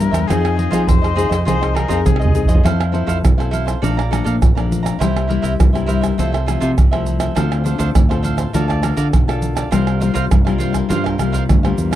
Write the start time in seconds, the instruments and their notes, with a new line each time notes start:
Already playing: nylon-string guitar G2, cavaquinho A#4 C5 E5, erhu A#4
0.00 nylon-string guitar G3 A#3 E4, pandeiro, shaker
0.11 fingered electric bass E2, cavaquinho A#4 C5 E5, pandeiro, tamborim, shaker, surdo
0.28 fingered electric bass F2, nylon-string guitar F3 C4 D#4 G#4, cavaquinho F4 G#4 C5 D#5, erhu G#4, pandeiro, tamborim, shaker, surdo
0.45 pandeiro, tamborim, shaker
0.56 cavaquinho F4 G#4 C5 D#5, pandeiro
0.71 fingered electric bass F3, nylon-string guitar C4 D#4 G#4, cavaquinho F4 G#4 C5 D#5, pandeiro, shaker, surdo
0.87 fingered electric bass F2, nylon-string guitar C3, erhu C5, pandeiro, tamborim, shaker, surdo
1.02 cavaquinho G#4 C5 D#5, pandeiro, tamborim, shaker
1.15 nylon-string guitar C4 D#4 G#4, cavaquinho F4 G#4 C5 D#5, pandeiro, shaker
1.29 fingered electric bass F2, cavaquinho G#4 C5 D#5, pandeiro, tamborim, shaker, surdo
1.45 fingered electric bass C2, nylon-string guitar F3 C4 D#4 G#4, cavaquinho F4 G#4 C5 D#5, erhu C5, pandeiro, shaker, surdo
1.61 cavaquinho G#4 C5 D#5, pandeiro, tamborim, shaker, surdo
1.74 cavaquinho F4 G#4 C5 D#5, erhu A#4, pandeiro, tamborim
1.88 fingered electric bass F2, nylon-string guitar C4 D#4 G#4, cavaquinho F4 G#4 C5 D#5, pandeiro, shaker, surdo
2.06 fingered electric bass C2, nylon-string guitar C3, erhu G#4, pandeiro, tamborim, shaker, surdo
2.16 cavaquinho D#5, tamborim
2.21 cavaquinho G#4 C5, pandeiro, shaker
2.25 surdo
2.35 nylon-string guitar C4 D#4 G#4, pandeiro, shaker
2.45 cavaquinho D#5, pandeiro, shaker, surdo
2.49 fingered electric bass F2, cavaquinho G#4 C5, surdo
2.55 surdo
2.63 fingered electric bass F2, nylon-string guitar F3 C4 E4 A4, cavaquinho E4 A4 C5 F5, pandeiro, tamborim, shaker, surdo
2.81 pandeiro, tamborim, shaker
2.92 nylon-string guitar C4 E4 A4, cavaquinho E4 A4 C5 F5, pandeiro
3.07 fingered electric bass F2, cavaquinho E4 A4 C5 F5, pandeiro, shaker, surdo
3.23 fingered electric bass B1, pandeiro, tamborim, shaker, surdo
3.38 nylon-string guitar C4 E4 A4, cavaquinho A4 C5 F5, pandeiro, tamborim, shaker
3.51 cavaquinho E4 A4 C5 F5, pandeiro, shaker
3.66 cavaquinho A4 C5 F5, pandeiro, tamborim, shaker, surdo
3.82 fingered electric bass A#1, nylon-string guitar A#2 F3 A3 D4, cavaquinho A4 D5 F5 A#5, pandeiro, shaker, surdo
3.97 cavaquinho D5 F5 A#5, pandeiro, tamborim, shaker
4.11 nylon-string guitar F3 A3 D4, cavaquinho A4 D5 F5 A#5, pandeiro, tamborim, shaker
4.24 fingered electric bass A#2, cavaquinho A4 D5 F5 A#5, pandeiro, shaker, surdo
4.42 fingered electric bass A#1, pandeiro, tamborim, shaker, surdo
4.55 nylon-string guitar F3 A3 D4, cavaquinho D5 F5 A#5, pandeiro, tamborim, shaker
4.72 pandeiro, shaker
4.83 cavaquinho D5 F5 A#5, pandeiro, tamborim, shaker, surdo
4.99 fingered electric bass C2, nylon-string guitar C3 G3 A#3 E4, cavaquinho E4 A#4 C5 E5, pandeiro, tamborim, shaker, surdo
5.17 pandeiro, tamborim, shaker
5.28 nylon-string guitar G3 A#3 E4, cavaquinho E4 A#4 C5 E5, pandeiro
5.42 fingered electric bass C2, cavaquinho E4 A#4 C5 E5, pandeiro, shaker, surdo
5.60 fingered electric bass C2, nylon-string guitar G2, pandeiro, tamborim, shaker, surdo
5.73 nylon-string guitar G3 A#3 E4, cavaquinho A#4 C5 E5, pandeiro, tamborim, shaker
5.86 cavaquinho E4 A#4 C5 E5, pandeiro, shaker
6.01 cavaquinho A#4 C5 E5, pandeiro, tamborim, shaker, surdo
6.18 fingered electric bass C2, nylon-string guitar C3 F3 A3 E4, cavaquinho F4 A4 C5 E5, pandeiro, shaker, surdo
6.32 cavaquinho A4 C5 E5, pandeiro, tamborim, shaker
6.46 nylon-string guitar F3 A3 E4, cavaquinho F4 A4 C5 E5, pandeiro, tamborim, shaker
6.60 fingered electric bass C3, cavaquinho F4 A4 C5 E5, pandeiro, shaker, surdo
6.78 fingered electric bass C2, nylon-string guitar C3, pandeiro, tamborim, shaker, surdo
6.91 nylon-string guitar F3 A3 E4, cavaquinho A4 C5 E5, pandeiro, tamborim, shaker
7.06 pandeiro, shaker
7.20 cavaquinho A4 C5 E5, pandeiro, tamborim, shaker, surdo
7.35 fingered electric bass D2, nylon-string guitar D3 C4 F4 A4, cavaquinho D4 A4 C5 F5, pandeiro, tamborim, shaker, surdo
7.52 pandeiro, tamborim, shaker
7.64 nylon-string guitar C4 F4 A4, cavaquinho D4 A4 C5 F5, pandeiro, shaker
7.78 fingered electric bass D2, cavaquinho D4 A4 C5 F5, pandeiro, shaker, surdo
7.95 fingered electric bass D2, nylon-string guitar A2, pandeiro, tamborim, shaker, surdo
8.09 nylon-string guitar C4 F4 A4, cavaquinho A4 C5 F5, pandeiro, tamborim, shaker
8.23 cavaquinho D4 A4 C5 F5, pandeiro, shaker
8.37 cavaquinho A4 C5 F5, pandeiro, tamborim, shaker, surdo
8.53 fingered electric bass D2, nylon-string guitar D3 A#3 F4 A4, cavaquinho A#4 D5 F5 A5, pandeiro, shaker, surdo
8.68 cavaquinho D5 F5 A5, pandeiro, tamborim, shaker, surdo
8.82 nylon-string guitar A#3 F4 A4, cavaquinho A#4 D5 F5 A5, pandeiro, tamborim, shaker
8.97 fingered electric bass D3, cavaquinho A#4 D5 F5 A5, pandeiro, shaker, surdo
9.13 fingered electric bass B1, nylon-string guitar D3, pandeiro, tamborim, shaker, surdo
9.28 nylon-string guitar A#3 F4 A4, cavaquinho D5 F5 A5, pandeiro, tamborim, shaker
9.42 pandeiro, shaker
9.55 cavaquinho D5 F5 A5, pandeiro, tamborim, shaker, surdo
9.71 fingered electric bass C2, nylon-string guitar C3 G3 A#3 F4, cavaquinho F4 A#4 C5 F5, pandeiro, tamborim, shaker, surdo
9.87 pandeiro, tamborim, shaker
10.00 nylon-string guitar G3 A#3 F4, cavaquinho F4 A#4 C5 F5, pandeiro, shaker
10.14 fingered electric bass C2, cavaquinho F4 A#4 C5 F5, pandeiro, shaker, surdo
10.31 fingered electric bass C2, nylon-string guitar G2, pandeiro, tamborim, shaker, surdo
10.45 nylon-string guitar G3 A#3 F4, cavaquinho A#4 C5 F5, pandeiro, tamborim, shaker
10.58 cavaquinho F4 A#4 C5 F5, pandeiro, shaker
10.73 cavaquinho A#4 C5 F5, pandeiro, tamborim, shaker, surdo
10.89 fingered electric bass G2, nylon-string guitar C3 G3 A#3 F4, cavaquinho F4 A#4 C5 F5, pandeiro, shaker, surdo
11.04 cavaquinho A#4 C5 F5, pandeiro, tamborim, shaker, surdo
11.18 fingered electric bass C2, nylon-string guitar G3 A#3 F4, cavaquinho F4 A#4 C5 F5, pandeiro, tamborim, shaker
11.32 cavaquinho F4 A#4 C5 F5, pandeiro, shaker, surdo
11.49 fingered electric bass D2, nylon-string guitar G2, pandeiro, tamborim, shaker, surdo
11.63 nylon-string guitar G3 A#3 F4, cavaquinho A#4 C5 F5, pandeiro, tamborim, shaker
11.78 fingered electric bass E2, pandeiro, shaker
11.91 cavaquinho C5 F5